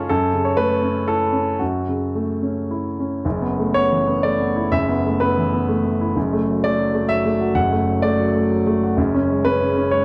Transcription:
0.00 0.10 F#2 medium
0.00 0.12 C#3 soft
0.00 0.12 G#3 medium
0.00 0.12 C#4 medium
0.00 0.12 F4 medium
0.00 0.12 G#4 medium
0.00 0.09 A4 medium
0.00 0.12 C#5 medium
0.00 0.12 F5 medium
0.09 1.57 F#2 medium
0.09 0.45 A4 medium
0.33 0.73 C#3 medium
0.45 0.57 C#5 medium
0.57 0.98 A3 medium
0.57 1.08 B4 loud
0.82 1.23 C#4 medium
1.08 1.50 E4 medium
1.08 1.60 A4 medium
1.33 1.76 C#4 soft
1.59 3.20 F#2 medium
1.59 2.98 F#4 medium
1.88 2.32 C#3 soft
2.15 2.60 A3 soft
2.43 2.87 C#4 soft
2.71 3.14 E4 soft
2.99 3.25 C#4 soft
3.25 4.67 F#1 medium
3.25 4.68 F#2 medium
3.42 3.67 B3 medium
3.59 3.84 A3 medium
3.74 4.00 B3 medium
3.74 4.22 C#5 loud
3.91 4.16 E3 medium
4.07 4.33 B3 medium
4.23 4.49 A3 medium
4.23 4.71 D5 medium
4.40 4.65 B3 medium
4.56 4.81 E4 medium
4.72 6.13 F#1 medium
4.72 6.13 F#2 medium
4.72 5.20 E5 loud
4.89 5.14 B3 medium
5.06 5.31 A3 soft
5.20 5.46 B3 medium
5.20 5.92 B4 medium
5.37 5.62 E3 medium
5.53 5.78 B3 medium
5.69 5.94 A3 medium
5.85 6.10 B3 medium
6.01 6.17 E4 medium
6.16 7.52 F#1 medium
6.16 7.53 F#2 medium
6.33 6.58 A3 medium
6.49 6.73 F#3 soft
6.64 6.88 A3 medium
6.64 7.09 D5 loud
6.79 7.03 F#3 medium
6.94 7.19 A3 medium
7.09 7.34 F#3 medium
7.09 7.56 E5 loud
7.25 7.50 A3 medium
7.41 7.66 F#4 medium
7.54 8.93 F#1 medium
7.54 8.94 F#2 medium
7.54 8.03 F#5 medium
7.72 7.97 A3 medium
7.88 8.13 F#3 medium
8.02 8.29 A3 medium
8.02 8.74 D5 medium
8.19 8.45 F#3 medium
8.35 8.61 A3 medium
8.51 8.76 F#3 medium
8.67 8.92 A3 medium
8.83 8.99 F#4 medium
8.97 10.05 F#1 medium
8.97 10.05 F#2 medium
9.14 9.39 C#4 medium
9.30 9.55 G#3 medium
9.45 9.71 C#4 medium
9.45 9.92 B4 loud
9.62 9.87 C#3 medium
9.78 10.02 C#4 medium
9.91 10.05 G#3 medium
9.91 10.05 C#5 medium

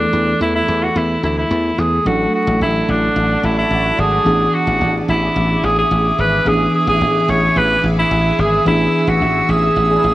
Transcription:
0.00 2.01 E3 medium
0.00 2.02 A3 medium
0.00 2.02 B3 medium
0.00 0.37 D4 medium
0.00 2.06 A4 medium
0.13 0.33 E2 loud
0.41 0.61 E2 medium
0.41 0.54 E4 medium
0.55 0.84 E4 medium
0.68 0.88 E2 loud
0.83 0.98 F#4 medium
0.96 1.15 E2 loud
0.96 1.24 E4 medium
1.23 1.43 D2 medium
1.23 1.37 E4 medium
1.38 1.81 E4 medium
1.51 1.71 E2 medium
1.78 1.98 E2 medium
1.78 2.08 G#4 medium
2.05 2.26 A1 loud
2.05 4.21 F#3 medium
2.05 4.22 A3 medium
2.05 4.22 D4 medium
2.05 4.24 F#4 medium
2.05 2.34 F#4 medium
2.05 4.23 A4 medium
2.05 4.24 D5 medium
2.05 4.24 A5 medium
2.34 2.59 F#4 medium
2.47 2.57 A1 loud
2.61 2.81 A1 medium
2.61 2.91 E4 medium
2.88 3.08 A1 medium
2.88 3.46 D4 medium
3.16 3.36 A1 loud
3.43 3.63 A1 medium
3.43 3.58 E4 medium
3.58 4.01 E4 medium
3.71 3.91 A1 loud
3.98 4.18 G#1 medium
3.98 4.56 G#4 loud
4.25 4.46 A1 medium
4.25 6.42 E3 medium
4.25 6.42 B3 medium
4.25 6.42 D4 medium
4.25 10.14 G#4 medium
4.25 6.43 G#4 medium
4.25 10.14 E5 medium
4.25 7.53 D6 medium
4.54 4.93 F#4 medium
4.67 4.77 A1 medium
4.81 5.01 A1 medium
5.08 5.28 A1 medium
5.08 5.66 E4 medium
5.36 5.56 A1 loud
5.63 5.83 A1 medium
5.63 5.78 G#4 medium
5.78 6.21 G#4 medium
5.91 6.11 A1 loud
6.18 6.38 G#1 medium
6.18 6.49 B4 medium
6.45 6.66 A1 medium
6.45 8.62 E3 medium
6.45 8.62 B3 medium
6.45 8.62 D4 medium
6.45 6.74 G#4 loud
6.45 8.63 G#4 medium
6.75 6.87 G#4 medium
6.87 6.97 A1 medium
6.87 7.31 G#4 loud
7.01 7.21 A1 loud
7.28 7.48 A1 medium
7.28 7.59 C#5 loud
7.56 7.76 A1 loud
7.56 7.84 B4 medium
7.56 10.14 E6 medium
7.83 8.03 A1 medium
7.99 8.41 E4 loud
8.11 8.31 A1 loud
8.38 8.58 G#1 medium
8.38 8.67 G#4 medium
8.65 8.86 A1 loud
8.65 10.14 E3 medium
8.65 10.14 B3 medium
8.65 10.14 D4 medium
8.65 9.10 E4 loud
8.65 10.14 G#4 medium
9.07 9.17 A1 medium
9.07 9.52 F#4 medium
9.21 9.41 A1 medium
9.49 9.69 A1 loud
9.49 10.14 G#4 medium
9.76 9.96 A1 loud
9.90 10.02 D4 medium
9.90 10.02 E4 medium
9.90 10.02 G#4 loud
10.04 10.14 A1 medium

